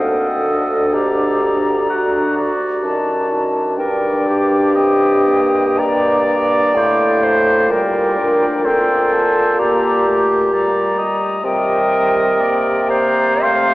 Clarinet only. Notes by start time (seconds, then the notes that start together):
Already playing: A4
0.93 G4
1.89 F#4
3.79 A#4
4.27 G4
5.79 D5
7.24 C5
7.71 A#4
8.65 A4
9.59 G4
11.44 A#4
12.90 C5
13.43 F5